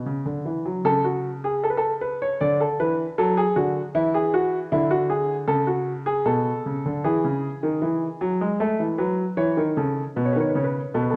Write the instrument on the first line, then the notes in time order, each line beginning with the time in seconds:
grand piano
Already playing: G#4
0.06 C#3
0.26 D3
0.46 E3
0.66 F#3
0.85 C#3 A4
1.05 F#4
1.44 G#4
1.64 A4
1.70 B4
1.77 A4
2.01 B4
2.22 C#5
2.41 D3 D5
2.60 A4
2.80 E3 B4
3.18 F#3 A4
3.37 G#4
3.56 D3 F#4
3.95 E3 E4
4.14 G#4
4.34 F#4
4.72 D3 E4
4.91 F#4
5.10 G#4
5.48 C#3 A4
5.67 F#4
6.06 G#4
6.26 B2 A4
6.66 C#3
6.86 D3
7.04 E3 G#4
7.24 C#3
7.63 D#3
7.82 E3
8.21 F#3
8.41 G#3
8.60 A3 A4
8.80 E3
8.98 F#3 B4
9.37 E3 C#5
9.57 D#3
9.77 C#3 A4
10.16 B2 B4
10.25 C#5
10.33 D#3 B4
10.40 C#5
10.49 B4
10.55 C#3 C#5
10.64 B4
10.94 B2 A4
11.02 B4
11.10 A4